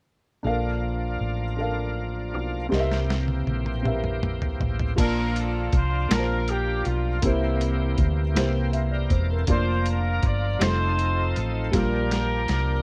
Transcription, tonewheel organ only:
0.44 2.67 F3 soft
0.44 2.67 A#3 soft
0.44 2.67 D4 soft
0.44 2.67 F4 medium
2.72 2.78 D3 soft
2.72 4.94 A#3 soft
2.72 4.94 C4 soft
2.72 4.94 G4 medium
2.79 4.97 E3 soft
4.97 7.19 F3 medium
4.97 7.19 A#3 soft
4.97 7.19 D4 soft
4.97 5.04 G#4 soft
5.04 7.23 F4 medium
7.23 9.45 E3 medium
7.23 9.45 A#3 soft
7.23 9.45 C4 soft
7.23 8.70 G4 medium
8.92 9.11 G4 soft
8.92 9.10 A#4 medium
9.12 9.30 A#4 soft
9.12 9.29 D5 medium
9.30 9.66 A4 soft
9.30 9.66 C5 soft
9.47 10.60 F3 soft
9.47 10.61 A#3 soft
9.47 10.61 D4 soft
9.47 10.61 A#4 medium
10.59 11.71 F3 medium
10.59 11.73 C4 medium
10.59 11.74 D#4 medium
10.59 11.73 A4 medium
11.72 12.82 F3 medium
11.72 12.82 A#3 soft
11.72 12.82 D4 soft
11.72 12.82 G4 medium

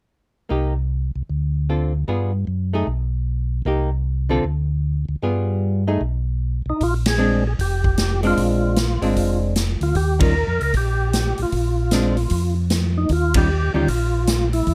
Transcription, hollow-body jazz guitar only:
0.49 0.73 A#3 soft
0.49 0.73 D#4 soft
0.49 0.74 G4 soft
1.69 1.92 D3 soft
1.69 1.92 C4 soft
1.69 1.92 F4 soft
1.69 1.92 A4 soft
2.08 2.31 G3 soft
2.08 2.31 B3 soft
2.08 2.31 F4 soft
2.08 2.31 G#4 soft
2.73 2.86 A3 medium
2.73 2.86 D#4 soft
2.73 2.87 G#4 medium
3.66 3.89 A#3 medium
3.66 3.89 D#4 soft
3.66 3.90 G4 medium
4.29 4.43 D3 medium
4.29 4.43 C4 medium
4.29 4.44 F4 medium
4.29 4.43 A4 medium
5.23 5.83 G3 soft
5.23 5.83 B3 soft
5.23 5.83 F4 soft
5.23 5.83 G#4 medium
5.87 6.01 A3 soft
5.87 6.01 D#4 medium
5.87 6.01 G#4 medium
7.18 7.42 G#3 medium
7.18 7.42 C4 medium
7.18 7.43 D4 medium
8.23 8.74 G#3 medium
8.23 8.75 C4 medium
8.23 8.75 D4 medium
9.02 9.53 G#3 medium
9.02 9.53 C4 medium
9.02 9.54 D4 medium
10.19 10.33 D#3 soft
10.19 10.33 G3 medium
10.19 10.33 C#4 medium
10.19 10.33 F4 medium
11.92 12.15 G#3 medium
11.92 12.15 C4 medium
11.92 12.16 D4 medium
13.35 13.48 D#3 medium
13.35 13.48 G3 soft
13.35 13.48 C#4 medium
13.35 13.48 F4 medium
13.74 13.87 D#3 medium
13.74 13.87 G3 soft
13.74 13.87 C#4 medium
13.74 13.88 F4 medium

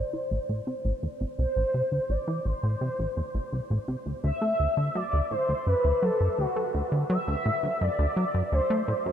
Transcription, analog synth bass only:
0.13 0.25 E3 medium
0.31 0.39 A1 medium
0.49 0.61 A2 medium
0.67 0.75 C3 medium
0.85 0.93 A1 loud
1.03 1.07 E2 medium
1.21 1.25 A1 medium
1.39 1.46 C2 medium
1.56 1.64 A1 medium
1.74 1.82 C3 medium
1.92 2.00 D2 medium
2.09 2.18 A1 medium
2.27 2.40 E3 medium
2.45 2.53 A1 medium
2.63 2.75 A2 medium
2.81 2.89 C3 medium
2.99 3.07 A1 loud
3.17 3.22 E2 medium
3.34 3.39 A1 medium
3.52 3.61 C2 medium
3.70 3.78 A1 medium
3.88 3.96 C3 medium
4.06 4.14 D2 medium
4.24 4.32 D2 medium
4.41 4.54 A3 medium
4.59 4.68 D2 medium
4.77 4.90 D3 medium
4.95 5.03 F#3 medium
5.13 5.21 D2 medium
5.31 5.36 A2 medium
5.49 5.54 D2 medium
5.67 5.75 F#2 medium
5.84 5.93 D2 loud
6.02 6.11 F#3 medium
6.20 6.28 F#2 medium
6.38 6.46 D2 medium
6.56 6.68 A3 medium
6.74 6.82 D2 medium
6.92 7.04 D3 medium
7.10 7.18 F#3 medium
7.28 7.36 D2 loud
7.46 7.50 A2 medium
7.63 7.68 D2 medium
7.81 7.89 F#2 medium
7.99 8.07 D2 medium
8.16 8.25 F#3 medium
8.34 8.43 F#2 medium
8.52 8.60 D2 medium
8.70 8.83 A3 medium
8.88 8.93 A2 medium
9.06 9.12 F#2 medium

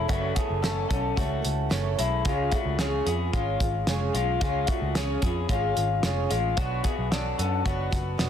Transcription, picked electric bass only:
0.09 0.32 F#1 medium
0.50 0.85 F#1 medium
0.91 1.14 B1 medium
1.18 1.41 C#2 medium
1.45 1.68 C#2 medium
1.72 1.95 F#1 medium
1.99 2.22 B1 medium
2.25 2.48 C#2 medium
2.65 3.00 C#2 medium
3.06 3.29 F2 medium
3.34 3.57 G#1 medium
3.60 3.83 G#1 medium
3.87 4.10 F1 medium
4.14 4.37 B1 medium
4.41 4.64 C#2 loud
4.82 5.16 C#2 medium
5.22 5.45 F2 medium
5.49 5.72 G#1 medium
5.77 6.00 G#1 medium
6.04 6.27 F1 medium
6.31 6.54 A1 medium
6.58 6.81 B1 medium
6.98 7.33 B1 medium
7.39 7.62 F#2 medium
7.66 7.89 F#1 medium
7.93 8.16 F#1 medium
8.19 8.29 E1 medium

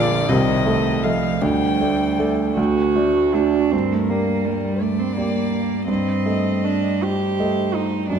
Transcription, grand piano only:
0.00 0.32 A#1 medium
0.00 0.32 A#2 medium
0.00 0.32 A#3 soft
0.00 0.31 F4 medium
0.00 0.31 D5 medium
0.29 0.65 C2 medium
0.29 0.65 C3 medium
0.66 1.00 A3 soft
0.66 1.00 A4 soft
0.66 1.01 D#5 medium
1.04 1.38 A3 soft
1.04 1.38 A4 soft
1.04 1.39 D#5 soft
1.42 1.79 D2 medium
1.42 1.79 D3 medium
1.80 2.15 A3 soft
1.80 2.15 A4 soft
1.80 2.15 D5 soft
2.19 2.53 A3 soft
2.19 2.54 A4 soft
2.19 2.54 D5 soft
2.57 2.94 D2 medium
2.57 2.94 D3 soft
2.96 3.31 A3 soft
2.96 3.31 F#4 soft
2.96 3.31 D5 soft
3.34 3.69 A3 soft
3.34 3.69 F#4 soft
3.34 3.69 D5 soft
3.72 4.08 G2 soft
4.10 5.13 A#3 soft
4.10 5.13 G4 soft
4.10 5.13 D5 soft
5.17 5.84 A#3 soft
5.17 5.85 G4 soft
5.17 5.85 D5 soft
5.88 6.24 G2 soft
6.26 7.35 A3 soft
6.26 7.35 A4 soft
6.26 7.35 D#5 soft
7.39 8.06 A3 soft
7.39 8.06 A4 soft
7.39 8.06 D#5 soft
8.10 8.19 F#2 soft

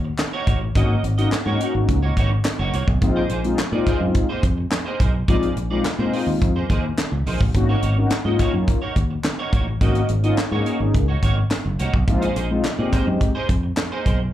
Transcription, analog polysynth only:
0.75 0.96 A#3 medium
0.75 0.96 C#4 medium
0.75 0.96 D#4 medium
0.75 0.96 F#4 loud
1.17 1.31 A#3 medium
1.17 1.31 C#4 medium
1.17 1.31 D#4 medium
1.17 1.32 F#4 loud
1.45 2.00 A#3 medium
1.45 2.00 C#4 medium
1.45 2.00 D#4 medium
1.45 2.00 F#4 medium
3.02 3.22 G#3 medium
3.02 3.22 C4 medium
3.02 3.22 D#4 medium
3.02 3.22 F4 medium
3.44 3.58 G#3 medium
3.44 3.58 C4 medium
3.44 3.58 D#4 medium
3.44 3.58 F4 loud
3.73 4.27 G#3 medium
3.73 4.27 C4 medium
3.73 4.27 D#4 medium
3.73 4.27 F4 medium
5.28 5.49 G#3 medium
5.28 5.49 C4 medium
5.28 5.49 D#4 medium
5.28 5.49 F4 loud
5.70 5.84 G#3 medium
5.70 5.84 C4 medium
5.70 5.84 D#4 medium
5.70 5.84 F4 medium
5.99 6.53 G#3 medium
5.99 6.53 C4 medium
5.99 6.53 D#4 medium
5.99 6.53 F4 medium
7.55 7.75 A#3 medium
7.55 7.75 C#4 medium
7.55 7.75 D#4 medium
7.55 7.75 F#4 loud
7.97 8.11 A#3 medium
7.97 8.11 C#4 medium
7.97 8.11 D#4 medium
7.97 8.11 F#4 medium
8.25 8.79 A#3 medium
8.25 8.80 C#4 medium
8.25 8.80 D#4 medium
8.25 8.80 F4 medium
9.81 10.01 A#3 medium
9.81 10.01 C#4 medium
9.81 10.01 D#4 medium
9.81 10.02 F#4 loud
10.23 10.37 A#3 medium
10.23 10.37 C#4 medium
10.23 10.37 D#4 medium
10.23 10.37 F4 loud
10.51 11.05 A#3 medium
10.51 11.06 C#4 medium
10.51 11.06 D#4 medium
10.51 11.06 G#4 medium
12.07 12.28 G#3 medium
12.07 12.28 C4 medium
12.07 12.28 D#4 medium
12.07 12.28 F4 loud
12.50 12.64 G#3 medium
12.50 12.64 C4 medium
12.50 12.64 D#4 medium
12.50 12.64 F4 medium
12.78 13.32 G#3 medium
12.78 13.32 C4 medium
12.78 13.33 D#4 medium
12.78 13.33 G4 medium

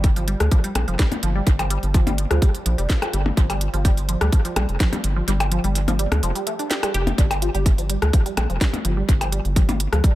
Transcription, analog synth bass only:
0.00 0.35 G1 medium
0.40 0.49 D2 loud
0.75 0.85 A#1 loud
0.88 0.96 F1 medium
1.23 1.41 G1 medium
1.47 1.78 G1 loud
1.83 2.26 G1 medium
2.31 2.39 D2 medium
2.66 2.75 A#1 loud
2.78 2.87 F1 medium
3.13 3.31 G1 medium
3.37 3.68 G1 loud
3.74 4.16 G1 medium
4.21 4.30 D2 medium
4.56 4.66 A#1 loud
4.69 4.77 F1 medium
5.04 5.22 G1 medium
5.28 5.59 G1 loud
5.64 6.06 G1 medium
6.12 6.20 D2 loud
6.23 6.32 F1 loud
6.94 7.12 F1 loud
7.18 7.49 G1 loud
7.54 7.97 G1 medium
8.02 8.10 D2 loud
8.37 8.46 A#1 loud
8.50 8.58 F1 medium
8.85 9.03 G1 medium
9.09 9.40 G1 loud
9.45 9.87 G1 medium
9.92 10.01 D2 loud

